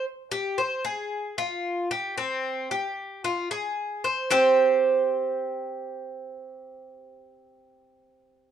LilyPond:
\new Staff \with { instrumentName = "Cuban tres" } { \time 4/4 \key f \dorian \tempo 4 = 112 r8 g'8 c''8 aes'4 f'4 g'8 | c'4 g'4 f'8 aes'4 c''8 | <c' g' c''>1~ | <c' g' c''>1 | }